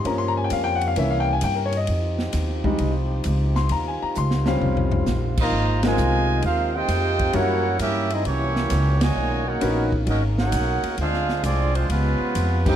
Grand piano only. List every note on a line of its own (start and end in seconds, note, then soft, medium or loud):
0.04 0.92 F3 soft
0.04 0.93 A#3 soft
0.04 0.93 C#4 medium
0.04 0.21 A#5 medium
0.18 0.35 C6 medium
0.28 0.32 A#5 medium
0.37 0.47 G#5 medium
0.44 0.50 G5 medium
0.53 0.67 F5 medium
0.64 0.80 G5 loud
0.75 0.86 F#5 medium
0.88 0.96 F5 medium
0.97 1.32 E3 soft
0.97 1.32 A#3 soft
0.97 1.32 C#4 medium
0.97 1.13 E5 medium
1.11 1.26 F5 medium
1.20 1.31 G5 medium
1.33 1.41 G#5 medium
1.44 1.58 G5 medium
1.55 1.72 A#4 medium
1.66 1.76 C#5 medium
1.77 2.43 D#5 medium
2.64 2.90 G3 medium
2.64 2.90 G#3 soft
2.64 2.91 D#4 medium
3.56 3.70 C6 medium
3.72 3.86 A#5 medium
3.88 4.01 G#5 medium
4.03 4.16 A#5 medium
4.18 4.47 C6 medium
4.46 5.04 F3 soft
4.46 5.04 G3 soft
4.46 5.04 C4 medium
4.46 5.03 C#4 medium
4.46 5.42 F5 medium
5.83 6.40 G#3 medium
5.83 6.40 C4 medium
5.83 6.41 D#4 medium
5.83 6.41 F4 medium
5.83 6.41 A#4 medium
7.33 7.62 G3 medium
7.33 7.62 C#4 medium
7.33 7.62 E4 medium
7.33 7.62 F#4 medium
7.33 7.63 A#4 medium
9.61 9.89 B3 medium
9.61 9.90 C#4 medium
9.61 9.90 D#4 medium
9.61 9.90 F#4 medium
9.61 9.90 A#4 medium
12.65 12.76 G3 medium
12.65 12.76 A#3 medium
12.65 12.76 C4 medium
12.65 12.76 D#4 medium
12.65 12.76 G4 medium